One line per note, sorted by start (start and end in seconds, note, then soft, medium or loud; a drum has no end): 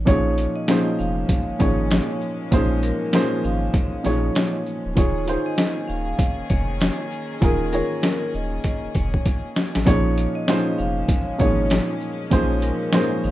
0.05 0.48 A#1 loud
0.05 0.63 A#2 medium
0.05 0.63 F3 medium
0.05 4.93 G#3 medium
0.05 4.93 A#3 medium
0.05 0.63 C#4 medium
0.05 4.93 C#4 medium
0.05 0.64 D#4 medium
0.05 0.64 G#4 medium
0.05 0.53 C#5 loud
0.05 0.64 C#5 loud
0.05 kick loud
0.05 closed hi-hat loud
0.38 closed hi-hat medium
0.38 shaker medium
0.56 0.96 D#5 medium
0.68 1.53 A#2 medium
0.68 1.53 F3 medium
0.68 1.53 C#4 medium
0.68 1.53 D#4 medium
0.68 1.54 G#4 medium
0.68 1.54 C5 loud
0.68 snare loud
0.68 closed hi-hat medium
0.99 1.24 F1 medium
0.99 1.56 F5 medium
0.99 shaker soft
1.29 kick loud
1.29 closed hi-hat loud
1.49 1.54 G#1 soft
1.59 2.01 G#1 medium
1.59 2.44 A#2 medium
1.59 2.44 F3 medium
1.59 2.45 C#4 medium
1.59 2.45 D#4 medium
1.59 2.45 G#4 medium
1.59 2.48 C#5 medium
1.59 2.45 C#5 medium
1.59 kick medium
1.59 closed hi-hat medium
1.59 shaker medium
1.91 snare loud
1.91 closed hi-hat medium
2.21 shaker medium
2.51 2.93 A#1 medium
2.51 3.08 A#2 medium
2.51 3.08 F3 medium
2.51 3.08 C#4 medium
2.51 3.09 D#4 medium
2.51 3.09 G#4 medium
2.51 3.09 C5 loud
2.51 kick loud
2.51 closed hi-hat medium
2.83 3.10 A#4 medium
2.83 closed hi-hat medium
2.83 shaker medium
3.12 3.97 A#2 medium
3.12 3.98 F3 medium
3.12 3.98 C#4 medium
3.12 3.98 D#4 medium
3.12 3.99 G#4 medium
3.12 3.41 A#4 medium
3.12 3.99 C5 loud
3.12 snare loud
3.12 closed hi-hat medium
3.44 3.69 G#1 loud
3.44 4.02 F5 medium
3.44 shaker medium
3.74 kick loud
3.74 closed hi-hat medium
3.94 3.98 A#1 soft
4.03 4.30 A#1 loud
4.03 4.89 A#2 medium
4.03 4.89 F3 medium
4.03 4.89 C#4 medium
4.03 4.90 D#4 medium
4.03 4.90 G#4 medium
4.03 4.33 C#5 medium
4.03 4.90 C#5 medium
4.03 snare soft
4.03 closed hi-hat medium
4.03 shaker medium
4.35 snare loud
4.35 closed hi-hat medium
4.66 shaker medium
4.86 4.95 D1 medium
4.94 5.37 D#1 loud
4.94 9.81 D#3 medium
4.94 5.24 D#3 medium
4.94 9.82 A#3 medium
4.94 9.82 C#4 medium
4.94 5.25 D#4 medium
4.94 5.25 F4 medium
4.94 9.82 G#4 medium
4.94 5.25 G#4 medium
4.94 5.44 C#5 loud
4.94 5.26 C#5 medium
4.94 kick loud
4.94 closed hi-hat medium
5.27 6.40 D#3 medium
5.27 6.40 D#4 medium
5.27 6.41 F4 medium
5.27 6.41 G#4 medium
5.27 6.41 C5 medium
5.27 closed hi-hat medium
5.27 shaker medium
5.46 5.86 D#5 medium
5.58 snare loud
5.58 closed hi-hat medium
5.88 6.14 D#1 medium
5.88 6.46 F5 medium
5.88 shaker medium
6.19 kick loud
6.19 closed hi-hat loud
6.39 6.43 F1 soft
6.50 6.91 F1 loud
6.50 7.38 C#5 medium
6.50 kick medium
6.50 closed hi-hat medium
6.50 shaker medium
6.81 snare loud
6.81 closed hi-hat medium
7.11 shaker medium
7.41 7.82 D#1 loud
7.41 7.70 D#3 medium
7.41 7.70 D#4 medium
7.41 7.70 F4 medium
7.41 7.71 G#4 medium
7.41 7.71 A#4 loud
7.41 kick loud
7.41 closed hi-hat medium
7.72 8.85 D#3 medium
7.72 8.85 D#4 medium
7.72 8.86 F4 medium
7.72 8.86 G#4 medium
7.72 8.00 A#4 medium
7.72 8.86 C#5 medium
7.72 closed hi-hat medium
7.72 shaker medium
8.03 8.31 A#4 medium
8.03 snare loud
8.03 closed hi-hat medium
8.34 8.59 D#1 loud
8.34 8.92 D#5 medium
8.34 shaker medium
8.64 kick medium
8.64 closed hi-hat loud
8.84 8.88 F1 soft
8.95 9.20 F1 medium
8.95 9.23 C#5 medium
8.95 kick medium
8.95 closed hi-hat medium
8.95 shaker medium
9.14 kick medium
9.26 kick medium
9.26 closed hi-hat medium
9.56 snare loud
9.56 shaker medium
9.75 9.85 A1 medium
9.75 snare medium
9.85 10.27 A#1 loud
9.85 10.42 A#2 medium
9.85 10.43 F3 medium
9.85 13.31 G#3 medium
9.85 13.31 A#3 medium
9.85 10.43 C#4 medium
9.85 13.31 C#4 medium
9.85 10.43 D#4 medium
9.85 10.43 G#4 medium
9.85 10.33 C#5 loud
9.85 10.44 C#5 loud
9.85 kick loud
9.85 closed hi-hat loud
10.18 closed hi-hat medium
10.18 shaker medium
10.35 10.76 D#5 medium
10.47 11.32 A#2 medium
10.47 11.32 F3 medium
10.47 11.33 C#4 medium
10.47 11.33 D#4 medium
10.47 11.33 G#4 medium
10.47 11.34 C5 loud
10.47 snare loud
10.47 closed hi-hat medium
10.78 11.04 F1 medium
10.78 11.36 F5 medium
10.78 shaker medium
11.09 kick loud
11.09 closed hi-hat loud
11.29 11.33 G#1 medium
11.38 11.80 G#1 loud
11.38 12.24 A#2 medium
11.38 12.24 F3 medium
11.38 12.24 C#4 medium
11.38 12.24 D#4 medium
11.38 12.25 G#4 medium
11.38 12.28 C#5 medium
11.38 12.25 C#5 medium
11.38 kick medium
11.38 closed hi-hat medium
11.38 shaker medium
11.70 snare loud
11.70 closed hi-hat medium
12.01 shaker medium
12.30 12.72 A#1 loud
12.30 12.87 A#2 medium
12.30 12.88 F3 medium
12.30 12.88 C#4 medium
12.30 12.88 D#4 medium
12.30 12.88 G#4 medium
12.30 12.89 C5 loud
12.30 kick loud
12.30 closed hi-hat loud
12.62 12.90 A#4 medium
12.62 closed hi-hat medium
12.62 shaker medium
12.92 13.31 A#2 medium
12.92 13.31 F3 medium
12.92 13.31 C#4 medium
12.92 13.31 D#4 medium
12.92 13.31 G#4 medium
12.92 13.21 A#4 medium
12.92 13.31 C5 loud
12.92 snare loud
12.92 closed hi-hat medium
13.23 13.31 G#1 loud
13.23 13.31 F5 medium
13.23 shaker medium